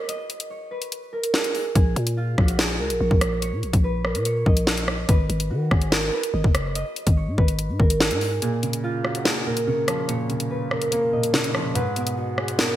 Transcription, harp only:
0, 0, Header, 1, 2, 480
1, 0, Start_track
1, 0, Tempo, 416667
1, 101, Time_signature, 4, 2, 24, 8
1, 14700, End_track
2, 0, Start_track
2, 0, Title_t, "Harp"
2, 0, Program_c, 0, 46
2, 0, Note_on_c, 0, 66, 80
2, 0, Note_on_c, 0, 68, 75
2, 0, Note_on_c, 0, 71, 84
2, 99, Note_on_c, 0, 75, 105
2, 581, Note_on_c, 0, 73, 75
2, 814, Note_off_c, 0, 71, 0
2, 819, Note_on_c, 0, 71, 83
2, 1300, Note_on_c, 0, 70, 80
2, 1369, Note_off_c, 0, 71, 0
2, 1469, Note_off_c, 0, 66, 0
2, 1521, Note_off_c, 0, 68, 0
2, 1540, Note_on_c, 0, 68, 89
2, 1776, Note_off_c, 0, 68, 0
2, 1781, Note_on_c, 0, 68, 72
2, 2015, Note_off_c, 0, 68, 0
2, 2020, Note_on_c, 0, 68, 105
2, 2154, Note_off_c, 0, 75, 0
2, 2502, Note_on_c, 0, 65, 94
2, 2740, Note_on_c, 0, 66, 79
2, 2784, Note_off_c, 0, 73, 0
2, 2809, Note_off_c, 0, 65, 0
2, 2977, Note_off_c, 0, 68, 0
2, 2981, Note_on_c, 0, 68, 88
2, 3218, Note_off_c, 0, 70, 0
2, 3222, Note_on_c, 0, 70, 80
2, 3463, Note_on_c, 0, 73, 76
2, 3937, Note_off_c, 0, 73, 0
2, 3941, Note_on_c, 0, 73, 104
2, 4423, Note_on_c, 0, 71, 90
2, 4492, Note_off_c, 0, 70, 0
2, 4662, Note_on_c, 0, 70, 76
2, 4731, Note_off_c, 0, 71, 0
2, 4897, Note_off_c, 0, 73, 0
2, 4902, Note_on_c, 0, 73, 84
2, 5143, Note_on_c, 0, 75, 89
2, 5377, Note_off_c, 0, 73, 0
2, 5381, Note_on_c, 0, 73, 85
2, 5547, Note_off_c, 0, 66, 0
2, 5600, Note_off_c, 0, 68, 0
2, 5861, Note_on_c, 0, 71, 96
2, 5930, Note_off_c, 0, 70, 0
2, 6342, Note_on_c, 0, 66, 81
2, 6581, Note_on_c, 0, 68, 76
2, 6821, Note_on_c, 0, 70, 95
2, 6890, Note_off_c, 0, 71, 0
2, 7060, Note_on_c, 0, 71, 87
2, 7129, Note_off_c, 0, 70, 0
2, 7198, Note_off_c, 0, 75, 0
2, 7301, Note_on_c, 0, 75, 83
2, 7584, Note_off_c, 0, 73, 0
2, 7777, Note_off_c, 0, 75, 0
2, 7782, Note_on_c, 0, 75, 104
2, 8260, Note_on_c, 0, 73, 72
2, 8496, Note_off_c, 0, 71, 0
2, 8500, Note_on_c, 0, 71, 85
2, 8980, Note_on_c, 0, 70, 80
2, 9050, Note_off_c, 0, 71, 0
2, 9149, Note_off_c, 0, 66, 0
2, 9201, Note_off_c, 0, 68, 0
2, 9219, Note_on_c, 0, 68, 90
2, 9456, Note_off_c, 0, 68, 0
2, 9461, Note_on_c, 0, 68, 73
2, 9694, Note_off_c, 0, 68, 0
2, 9699, Note_on_c, 0, 68, 103
2, 9836, Note_off_c, 0, 75, 0
2, 10180, Note_on_c, 0, 65, 98
2, 10420, Note_on_c, 0, 66, 80
2, 10463, Note_off_c, 0, 73, 0
2, 10489, Note_off_c, 0, 65, 0
2, 10654, Note_off_c, 0, 68, 0
2, 10659, Note_on_c, 0, 68, 88
2, 10896, Note_off_c, 0, 70, 0
2, 10900, Note_on_c, 0, 70, 81
2, 11143, Note_on_c, 0, 73, 79
2, 11615, Note_off_c, 0, 73, 0
2, 11620, Note_on_c, 0, 73, 103
2, 12101, Note_on_c, 0, 71, 88
2, 12170, Note_off_c, 0, 70, 0
2, 12342, Note_on_c, 0, 70, 81
2, 12411, Note_off_c, 0, 71, 0
2, 12577, Note_off_c, 0, 73, 0
2, 12582, Note_on_c, 0, 73, 80
2, 12821, Note_on_c, 0, 75, 87
2, 13058, Note_off_c, 0, 73, 0
2, 13062, Note_on_c, 0, 73, 83
2, 13227, Note_off_c, 0, 66, 0
2, 13278, Note_off_c, 0, 68, 0
2, 13540, Note_on_c, 0, 71, 101
2, 13609, Note_off_c, 0, 70, 0
2, 14021, Note_on_c, 0, 66, 83
2, 14259, Note_on_c, 0, 68, 76
2, 14501, Note_on_c, 0, 70, 95
2, 14570, Note_off_c, 0, 71, 0
2, 14700, Note_off_c, 0, 66, 0
2, 14700, Note_off_c, 0, 68, 0
2, 14700, Note_off_c, 0, 70, 0
2, 14700, Note_off_c, 0, 73, 0
2, 14700, Note_off_c, 0, 75, 0
2, 14700, End_track
0, 0, End_of_file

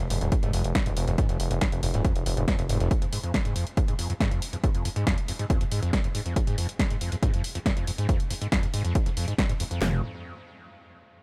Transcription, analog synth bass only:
0, 0, Header, 1, 2, 480
1, 0, Start_track
1, 0, Key_signature, -4, "minor"
1, 0, Tempo, 431655
1, 1315, Time_signature, 4, 2, 24, 8
1, 12487, End_track
2, 0, Start_track
2, 0, Title_t, "Analog synth bass"
2, 0, Program_c, 0, 38
2, 115, Note_on_c, 0, 29, 98
2, 212, Note_off_c, 0, 29, 0
2, 237, Note_on_c, 0, 27, 92
2, 331, Note_off_c, 0, 27, 0
2, 476, Note_on_c, 0, 29, 86
2, 571, Note_off_c, 0, 29, 0
2, 595, Note_on_c, 0, 29, 97
2, 692, Note_off_c, 0, 29, 0
2, 717, Note_on_c, 0, 29, 90
2, 811, Note_off_c, 0, 29, 0
2, 957, Note_on_c, 0, 27, 90
2, 1051, Note_off_c, 0, 27, 0
2, 1075, Note_on_c, 0, 29, 100
2, 1172, Note_off_c, 0, 29, 0
2, 1197, Note_on_c, 0, 29, 94
2, 1291, Note_off_c, 0, 29, 0
2, 1437, Note_on_c, 0, 29, 83
2, 1531, Note_off_c, 0, 29, 0
2, 1556, Note_on_c, 0, 29, 97
2, 1652, Note_off_c, 0, 29, 0
2, 1677, Note_on_c, 0, 29, 91
2, 1771, Note_off_c, 0, 29, 0
2, 1917, Note_on_c, 0, 29, 87
2, 2011, Note_off_c, 0, 29, 0
2, 2035, Note_on_c, 0, 29, 97
2, 2132, Note_off_c, 0, 29, 0
2, 2157, Note_on_c, 0, 27, 94
2, 2251, Note_off_c, 0, 27, 0
2, 2397, Note_on_c, 0, 29, 91
2, 2491, Note_off_c, 0, 29, 0
2, 2515, Note_on_c, 0, 29, 103
2, 2612, Note_off_c, 0, 29, 0
2, 2637, Note_on_c, 0, 29, 95
2, 2731, Note_off_c, 0, 29, 0
2, 2877, Note_on_c, 0, 29, 86
2, 2971, Note_off_c, 0, 29, 0
2, 2995, Note_on_c, 0, 29, 99
2, 3092, Note_off_c, 0, 29, 0
2, 3118, Note_on_c, 0, 29, 92
2, 3211, Note_off_c, 0, 29, 0
2, 10916, Note_on_c, 0, 29, 99
2, 11139, Note_off_c, 0, 29, 0
2, 12487, End_track
0, 0, End_of_file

